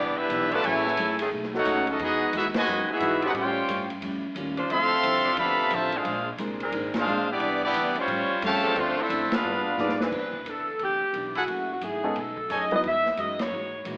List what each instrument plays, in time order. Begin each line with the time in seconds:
Already playing: upright bass C2, steel-string acoustic guitar C3 E3, trombone section G3 B3 D4, trumpet section B3 E4 G4 D5
0.00 steel-string acoustic guitar B3 D4
0.16 trombone section G3 B3 E4, trumpet section D4 G4 B4 E5
0.29 upright bass B1, steel-string acoustic guitar C3 E3 B3 D4, hi-hat pedal, ride
0.51 saxophone section F#3 A3 E4 B4, trombone section A3, trumpet section F4 B4 D5 A5, ride
0.63 upright bass A1, trombone section C#3 E3 A3, steel-string acoustic guitar F#3 A3 E4 G#4, trumpet section E4 A4 C#5 G#5, ride
0.76 snare
0.87 snare
0.97 upright bass G#1, steel-string acoustic guitar F#3 A3 E4 G#4, hi-hat pedal, ride
1.19 saxophone section D#3 A3 C#4 G#4, ride
1.32 upright bass B1, steel-string acoustic guitar B2 A3 D#4 G#4
1.43 snare
1.53 trombone section A3 D#4 F#4, trumpet section D#4 A4 C#5 F#5, snare
1.65 upright bass C#2, steel-string acoustic guitar B2 A3 D#4 G#4, hi-hat pedal, ride
1.87 trombone section F#3 A3 D#4, trumpet section C#4 F#4 D#5, ride
1.91 trumpet section A4
1.99 upright bass E2, steel-string acoustic guitar E3 G#3 D#4 F#4, trombone section G#3 B3 D#4, ride
2.04 trumpet section B3 F#4 G#4 D#5
2.33 upright bass D#2, steel-string acoustic guitar E3 G#3 D#4 F#4, trombone section G#3 B3 E4, trumpet section B3 G#4, hi-hat pedal, ride
2.37 trumpet section F#4 E5
2.54 trombone section B2 D#3 G#3, trumpet section F#4 B4 D#5 G#5, snare, ride
2.67 upright bass F#2, steel-string acoustic guitar E3 G#3 D#4 F#4
2.88 trombone section G#3 B3 E4, trumpet section G#4, muted upright bass stroke
2.92 trumpet section B3 F#4 E5
3.00 upright bass G#2, steel-string acoustic guitar E3 G#3 D#4 F#4, hi-hat pedal, ride
3.22 saxophone section F3 A3 C#4 G4, trombone section B3 D#4 F#4, trumpet section D#4 B4, ride
3.26 trumpet section G#4 F#5
3.33 steel-string acoustic guitar A2 G3 C#4 F4, upright bass A2, trombone section C#4 G4, ride
3.37 trombone section G3, trumpet section F4 C5 C#5 G5
3.68 upright bass G2, steel-string acoustic guitar A2 G3 C#4 F4, hi-hat pedal, ride
3.90 ride
4.01 upright bass F2, steel-string acoustic guitar A2 G3 C#4 F4, ride
4.35 upright bass D#2, steel-string acoustic guitar A2 G3 C#4 F4, hi-hat pedal, ride
4.57 saxophone section F3 D4 F4 C5, ride
4.70 upright bass D2, steel-string acoustic guitar D3 F3 C4 E4, trombone section F3 A3 C4, trumpet section A4 E5 F5 C6, ride
5.03 upright bass C2, steel-string acoustic guitar D3 F3 C4 E4, hi-hat pedal, ride
5.24 saxophone section F3 D4 F4 D5
5.37 upright bass D2, trombone section C3 F3 B3, steel-string acoustic guitar D3 F3 C4 E4, trumpet section A4 E5 F5 B5, ride
5.70 upright bass A1, steel-string acoustic guitar D3 F3 C4 E4, trombone section A3, trumpet section F4 C5 E5 A5, hi-hat pedal, ride
5.75 trombone section C3 F3
5.92 trombone section G#3 D4 F4, ride
5.97 trumpet section D4 G#4 C5 F5
6.04 upright bass A#1, steel-string acoustic guitar A#2 G#3 C4 D4, ride
6.38 upright bass C2, steel-string acoustic guitar A#2 G#3 C4 D4, hi-hat pedal, ride
6.60 saxophone section G#3 C4 D4 A#4, ride
6.72 upright bass G#1, steel-string acoustic guitar A#2 G#3 C4 D4, ride
6.94 trombone section F4, snare, ride
6.98 trombone section G#3 D4, trumpet section D4 G#4 C5 F5
7.06 upright bass A#1, steel-string acoustic guitar A#2 G#3 C4 D4, hi-hat pedal
7.30 trombone section G3 B3 D4, trumpet section B3 E4 G4 D5
7.40 upright bass C2, steel-string acoustic guitar C3 E3 B3 D4, ride
7.63 trombone section G3 B3 D4, trumpet section B3 E4 G4 D5
7.73 upright bass D2, steel-string acoustic guitar C3 E3 B3, hi-hat pedal, ride
7.77 steel-string acoustic guitar D4
7.95 trombone section F3 G3 C#4, trumpet section C5 C#5, ride
7.99 trumpet section G3 F4
8.07 upright bass A2, steel-string acoustic guitar A2 G3 C#4, ride
8.11 steel-string acoustic guitar F4
8.30 muted upright bass stroke
8.42 upright bass F2, steel-string acoustic guitar A2 G3 C#4 F4, trombone section C#3 F3 A3, trumpet section G4 C#5 F5 A5, hi-hat pedal, ride
8.64 saxophone section F3 C4 D4 A4
8.75 upright bass D2, steel-string acoustic guitar D3 A3, trombone section F3 A3 C4, trumpet section A3 D4, ride
8.79 steel-string acoustic guitar C4 F4, trumpet section F4 C5
8.97 trombone section A3 C4 E4
9.01 trumpet section D4 A4 C5 E5
9.09 upright bass F2, steel-string acoustic guitar D3 A3, hi-hat pedal, ride
9.13 steel-string acoustic guitar C4 F4
9.31 trombone section B3 D4 F4, trumpet section D4 G#4 B4 F5, muted upright bass stroke, snare, ride
9.44 upright bass G2, steel-string acoustic guitar G3 B3 F4 G#4
9.77 upright bass G#2, steel-string acoustic guitar G3 B3 F4 G#4, saxophone section D5, snare, hi-hat pedal
9.89 snare
10.00 saxophone section E3 C4 D4 B4, snare
10.12 upright bass C2, steel-string acoustic guitar C3 E3 B3 D4, kick, crash
10.33 kick
10.44 upright bass E2, steel-string acoustic guitar C3 E3 B3 D4, hi-hat pedal, ride
10.49 saxophone section A4
10.79 upright bass D2, steel-string acoustic guitar C3 E3 B3 D4, saxophone section G4, ride
11.13 upright bass B1, steel-string acoustic guitar C3 E3 B3 D4, hi-hat pedal, ride
11.35 trumpet section E4 G#4 A4 F#5, saxophone section F#4, ride
11.47 upright bass F#1, steel-string acoustic guitar F#3 A3 E4 G#4, ride
11.71 saxophone section F#4
11.81 upright bass G#1, steel-string acoustic guitar F#3 A3 E4 G#4, saxophone section G#4, hi-hat pedal, ride
12.04 grand piano G#3 B3 C#4 D#4 A4
12.15 upright bass B1, steel-string acoustic guitar B2 A3 D#4 G#4, saxophone section A4, ride
12.37 kick
12.49 upright bass F#2, steel-string acoustic guitar B2 A3 D#4 G#4, trumpet section D#4 A4 C#5 G#5, saxophone section D#5, hi-hat pedal, ride
12.71 grand piano F#3 B3 D#4 E4 B4, saxophone section D#5, ride
12.83 upright bass E2, steel-string acoustic guitar E3 G#3 D#4 F#4, saxophone section E5, ride
13.06 snare
13.17 upright bass F#2, steel-string acoustic guitar E3 G#3 D#4 F#4, saxophone section D#5, hi-hat pedal, ride
13.39 saxophone section C#5, snare, ride
13.51 upright bass G#2, steel-string acoustic guitar E3 G#3 D#4 F#4
13.84 upright bass A#2, steel-string acoustic guitar E3 G#3 D#4 F#4, hi-hat pedal, ride